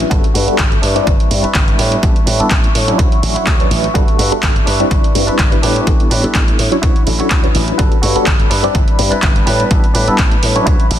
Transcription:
Already playing: E5 C#6
0.00 closed hi-hat
0.10 G1 G3 B3 D4 F#4 A4 B4, kick, closed hi-hat
0.24 closed hi-hat
0.34 G2 F#4 A4 B4, open hi-hat
0.47 G3 B3 D4 F#4 A4, muted slap bass stroke, closed hi-hat
0.58 G1, kick, clap, closed hi-hat
0.72 closed hi-hat
0.82 G2 D4 E4 B4, open hi-hat
0.95 G3 C4 D4 E4 D5, closed hi-hat
1.07 G1, kick, closed hi-hat
1.20 closed hi-hat
1.30 G2 G3 C4 D4 E4 B4, open hi-hat
1.43 D4 E4 B4, muted slap bass stroke, closed hi-hat
1.54 G1, kick, clap, closed hi-hat
1.67 G3 B3 D4 E4 B4, closed hi-hat
1.78 A2 D4 G4 B4, open hi-hat
1.92 closed hi-hat
2.03 A1 G3 B3 D4 E4 A4, kick, closed hi-hat
2.16 closed hi-hat
2.26 A2 D4 G4 B4, open hi-hat
2.39 G3 B3 D4 E4 A4, muted slap bass stroke, closed hi-hat
2.50 A1, kick, clap, closed hi-hat
2.64 closed hi-hat
2.74 A2, muted clean electric guitar stroke, open hi-hat
2.87 F#3 C#4 D4 E4 C#5, closed hi-hat
2.98 D2 E4 F#4 C#5, kick, closed hi-hat
3.12 closed hi-hat
3.22 A1 F#3 C#4 D4 E4 A4, open hi-hat
3.35 E4 F#4 C#5, muted slap bass stroke, closed hi-hat
3.47 D2, kick, clap, closed hi-hat
3.59 F#3 C#4 D4 E4 B4, closed hi-hat
3.71 A1, open hi-hat
3.84 closed hi-hat
3.94 G1 G3 B3 D4 F#4 A4 B4, kick, closed hi-hat
4.08 closed hi-hat
4.18 G2 F#4 A4 B4, open hi-hat
4.31 G3 B3 D4 F#4 A4, muted slap bass stroke, closed hi-hat
4.43 G1, kick, clap, closed hi-hat
4.56 closed hi-hat
4.66 G2 D4 E4 B4, open hi-hat
4.79 G3 C4 D4 E4 D5, closed hi-hat
4.91 G1, kick, closed hi-hat
5.04 closed hi-hat
5.15 G2 G3 C4 D4 E4 B4, open hi-hat
5.27 D4 E4 B4, muted slap bass stroke, closed hi-hat
5.39 G1, kick, clap, closed hi-hat
5.51 G3 B3 D4 E4 B4, closed hi-hat
5.62 A2 D4 G4 B4, open hi-hat
5.76 closed hi-hat
5.87 A1 G3 B3 D4 E4 A4, kick, closed hi-hat
6.00 closed hi-hat
6.10 A2 D4 G4 B4, open hi-hat
6.23 G3 B3 D4 E4 A4, muted slap bass stroke, closed hi-hat
6.35 A1, kick, clap, closed hi-hat
6.48 closed hi-hat
6.58 A2, muted clean electric guitar stroke, open hi-hat
6.71 F#3 C#4 D4 E4 C#5, closed hi-hat
6.82 D2 E4 F#4 B4 C#5 B5, kick, closed hi-hat
6.96 closed hi-hat
7.06 A1 F#3 C#4 D4 E4 A4, open hi-hat
7.19 E4 F#4 C#5, muted slap bass stroke, closed hi-hat
7.30 D2, kick, clap, closed hi-hat
7.43 F#3 C#4 D4 E4 B4, closed hi-hat
7.55 A1, open hi-hat
7.68 closed hi-hat
7.78 G1 G3 B3 D4 F#4 A4 B4, kick, closed hi-hat
7.92 closed hi-hat
8.02 G2 F#4 A4 C#5, open hi-hat
8.15 G3 B3 D4 F#4 A4, muted slap bass stroke, closed hi-hat
8.26 G1, kick, clap, closed hi-hat
8.40 closed hi-hat
8.50 G2 D4 E4 B4, open hi-hat
8.63 G3 C4 D4 E4 D5, closed hi-hat
8.75 G1, kick, closed hi-hat
8.88 closed hi-hat
8.98 G2 G3 C4 D4 E4 B4, open hi-hat
9.11 D4 E4 B4, muted slap bass stroke, closed hi-hat
9.22 G1, kick, clap, closed hi-hat
9.35 G3 B3 D4 E4 B4, closed hi-hat
9.46 A2 D4 G4 B4, open hi-hat
9.60 closed hi-hat
9.71 A1 G3 B3 D4 E4 A4, kick, closed hi-hat
9.84 closed hi-hat
9.94 A2 D4 G4 B4, open hi-hat
10.07 G3 B3 D4 E4 A4, muted slap bass stroke, closed hi-hat
10.18 A1, kick, clap, closed hi-hat
10.32 closed hi-hat
10.42 A2, muted clean electric guitar stroke, open hi-hat
10.55 F#3 C#4 D4 E4 C#5, closed hi-hat
10.66 D2 E4 F#4 C#5, kick, closed hi-hat
10.80 closed hi-hat
10.90 A1 F#3 C#4 D4 E4 A4, open hi-hat

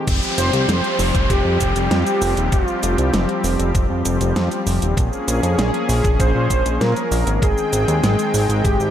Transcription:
0.07 F1 F3 G3 C4 G4, kick, closed hi-hat, crash, downlifter, cabasa
0.23 cabasa
0.38 F1 C5, closed hi-hat, cabasa
0.53 C2, closed hi-hat, cabasa
0.68 F1, snare, closed hi-hat, cabasa
0.84 closed hi-hat
0.99 F1, open hi-hat, cabasa
1.15 F1, kick, closed hi-hat, cabasa
1.30 F1 G4, kick, closed hi-hat, cabasa
1.45 F2
1.60 F1, kick, closed hi-hat, cabasa
1.76 F1, closed hi-hat, cabasa
1.91 F2 G4, snare, closed hi-hat, cabasa
2.07 closed hi-hat, cabasa
2.22 F1, open hi-hat, cabasa
2.37 D#1, closed hi-hat, cabasa
2.52 F1 F4, kick, closed hi-hat, cabasa
2.68 cabasa
2.83 F1, closed hi-hat, cabasa
2.98 C2, closed hi-hat, cabasa
3.14 F1, snare, closed hi-hat, cabasa
3.29 closed hi-hat
3.44 F1, open hi-hat, cabasa
3.59 F1, closed hi-hat, cabasa
3.75 F1, kick, closed hi-hat, cabasa
3.90 F2
4.05 F1, closed hi-hat, cabasa
4.21 F1, closed hi-hat, cabasa
4.36 F2, snare, closed hi-hat, cabasa
4.51 closed hi-hat, cabasa
4.67 F1, open hi-hat, cabasa
4.82 D#1, closed hi-hat, cabasa
4.97 A#1 A#3 C#4 G#4, kick, closed hi-hat, cabasa
5.13 cabasa
5.28 A#1, closed hi-hat, cabasa
5.43 F2, closed hi-hat, cabasa
5.58 A#1 G#4, snare, closed hi-hat, cabasa
5.74 closed hi-hat
5.89 A#1, open hi-hat, cabasa
6.04 A#1, kick, closed hi-hat, cabasa
6.19 A#1 C5, kick, closed hi-hat, cabasa
6.35 A#2
6.50 A#1, kick, closed hi-hat, cabasa
6.66 A#1, closed hi-hat, cabasa
6.81 A#2 A#4, snare, closed hi-hat, cabasa
6.96 closed hi-hat, cabasa
7.11 A#1, open hi-hat, cabasa
7.27 G#1, closed hi-hat, cabasa
7.42 G#1 D#3 G#3 C4 G#4 G5, kick, closed hi-hat, cabasa
7.58 cabasa
7.73 G#1, closed hi-hat, cabasa
7.88 D#2, closed hi-hat, cabasa
8.03 G#1, snare, closed hi-hat, cabasa
8.19 closed hi-hat, cabasa
8.34 G#1, open hi-hat, cabasa
8.49 G#1, closed hi-hat, cabasa
8.65 G#1 G4, kick, closed hi-hat, cabasa
8.80 G#1, cabasa

